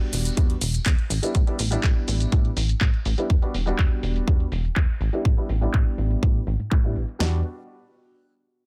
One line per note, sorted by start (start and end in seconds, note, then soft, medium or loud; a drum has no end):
0.00 0.34 G3 medium
0.00 0.34 B3 medium
0.00 0.35 D4 medium
0.00 0.35 F#4 loud
0.13 0.30 E1 medium
0.13 open hi-hat loud
0.13 tambourine medium
0.13 shaker medium
0.25 closed hi-hat medium
0.25 tambourine soft
0.25 shaker soft
0.37 0.55 E2 loud
0.37 0.52 G3 medium
0.37 0.53 B3 medium
0.37 0.53 D4 medium
0.37 0.53 F#4 medium
0.37 kick loud
0.37 closed hi-hat medium
0.37 shaker soft
0.50 closed hi-hat soft
0.61 0.79 E1 medium
0.61 open hi-hat loud
0.61 tambourine medium
0.61 shaker medium
0.74 closed hi-hat medium
0.74 tambourine soft
0.74 shaker soft
0.86 0.95 E2 loud
0.86 kick loud
0.86 clap loud
0.86 closed hi-hat medium
0.86 shaker soft
0.99 closed hi-hat soft
1.10 1.19 A1 loud
1.10 open hi-hat medium
1.10 tambourine medium
1.10 shaker medium
1.22 1.38 G3 medium
1.22 1.38 B3 medium
1.22 1.38 D4 medium
1.22 1.38 E4 medium
1.22 closed hi-hat medium
1.22 tambourine soft
1.22 shaker soft
1.35 1.44 A2 loud
1.35 kick loud
1.35 closed hi-hat medium
1.35 shaker soft
1.47 1.56 G3 medium
1.47 1.56 B3 medium
1.47 1.56 D4 medium
1.47 1.57 E4 loud
1.47 closed hi-hat soft
1.59 1.77 A1 medium
1.59 open hi-hat loud
1.59 tambourine loud
1.59 shaker medium
1.71 2.29 G3 medium
1.71 2.29 B3 medium
1.71 2.29 D4 medium
1.71 2.30 E4 loud
1.71 closed hi-hat medium
1.71 tambourine medium
1.71 shaker soft
1.84 1.93 A2 medium
1.84 kick loud
1.84 clap loud
1.84 closed hi-hat medium
1.84 shaker soft
2.08 2.26 A1 medium
2.08 open hi-hat medium
2.08 tambourine loud
2.08 shaker medium
2.20 closed hi-hat medium
2.20 tambourine medium
2.20 shaker soft
2.32 2.50 A2 loud
2.32 2.48 G3 medium
2.32 2.48 B3 medium
2.32 2.48 D4 medium
2.32 2.48 E4 medium
2.32 kick loud
2.32 closed hi-hat medium
2.32 shaker soft
2.45 closed hi-hat soft
2.57 2.74 A1 medium
2.57 open hi-hat loud
2.57 tambourine loud
2.57 shaker medium
2.69 closed hi-hat medium
2.69 tambourine medium
2.69 shaker soft
2.81 2.90 A2 loud
2.81 kick loud
2.81 clap loud
2.81 closed hi-hat medium
2.81 shaker soft
2.94 closed hi-hat soft
3.05 3.15 A1 loud
3.05 open hi-hat loud
3.05 tambourine medium
3.05 shaker medium
3.18 3.28 G3 medium
3.18 3.28 B3 medium
3.18 3.28 D4 medium
3.18 3.29 E4 medium
3.18 closed hi-hat medium
3.18 tambourine soft
3.18 shaker soft
3.30 3.39 E2 loud
3.30 kick loud
3.30 closed hi-hat medium
3.30 shaker soft
3.42 3.51 G3 medium
3.42 3.51 B3 medium
3.42 3.52 D4 medium
3.42 3.52 F#4 medium
3.42 closed hi-hat soft
3.54 3.72 E1 medium
3.54 open hi-hat loud
3.54 tambourine medium
3.54 shaker medium
3.66 4.24 G3 medium
3.66 4.24 B3 medium
3.66 4.25 D4 medium
3.66 4.25 F#4 loud
3.66 closed hi-hat soft
3.66 tambourine medium
3.66 shaker soft
3.79 3.88 E2 medium
3.79 kick loud
3.79 clap loud
3.79 closed hi-hat medium
4.03 4.21 E1 medium
4.03 open hi-hat loud
4.03 shaker medium
4.15 closed hi-hat medium
4.15 tambourine medium
4.15 shaker soft
4.27 4.45 E2 loud
4.27 4.43 G3 medium
4.27 4.43 B3 medium
4.27 4.43 D4 medium
4.27 4.43 F#4 medium
4.27 kick loud
4.27 closed hi-hat medium
4.27 shaker soft
4.40 closed hi-hat soft
4.52 4.70 E1 loud
4.52 open hi-hat loud
4.52 shaker medium
4.64 closed hi-hat medium
4.64 tambourine medium
4.64 shaker soft
4.76 4.85 E2 loud
4.76 kick loud
4.76 clap loud
4.76 closed hi-hat medium
4.89 closed hi-hat soft
5.01 5.10 A1 loud
5.01 open hi-hat loud
5.01 tambourine medium
5.01 shaker medium
5.13 5.28 G3 medium
5.13 5.28 B3 medium
5.13 5.28 D4 medium
5.13 5.28 E4 medium
5.13 closed hi-hat soft
5.13 tambourine medium
5.13 shaker soft
5.25 5.34 A2 loud
5.25 kick loud
5.37 5.46 G3 medium
5.37 5.47 B3 medium
5.37 5.47 D4 medium
5.37 5.47 E4 medium
5.37 closed hi-hat soft
5.49 5.67 A1 medium
5.49 open hi-hat loud
5.49 tambourine medium
5.49 shaker medium
5.61 6.19 G3 medium
5.61 6.20 B3 medium
5.61 6.20 D4 medium
5.61 6.20 E4 loud
5.61 closed hi-hat medium
5.61 shaker soft
5.74 5.83 A2 medium
5.74 kick loud
5.74 clap loud
5.98 6.16 A1 medium
5.98 open hi-hat loud
5.98 tambourine medium
5.98 shaker medium
6.11 closed hi-hat soft
6.11 tambourine soft
6.11 shaker soft
6.22 6.40 A2 loud
6.22 6.38 G3 medium
6.22 6.38 B3 medium
6.22 6.38 E4 medium
6.22 kick loud
6.47 6.56 A1 loud
6.47 open hi-hat loud
6.47 tambourine loud
6.47 shaker medium
6.60 6.69 A2 soft
6.60 closed hi-hat soft
6.60 tambourine medium
6.60 shaker soft
6.71 6.97 A2 loud
6.71 kick loud
6.71 clap loud
6.84 6.93 G3 medium
6.84 6.93 B3 medium
6.84 6.93 D4 medium
6.84 6.93 E4 medium
6.96 7.05 A1 medium
6.96 open hi-hat loud
6.96 tambourine medium
6.96 shaker medium
7.08 closed hi-hat medium
7.08 shaker soft
7.19 7.43 E2 medium
7.19 7.38 G3 medium
7.19 7.38 B3 medium
7.19 7.39 D4 medium
7.19 7.39 F#4 medium
7.19 snare loud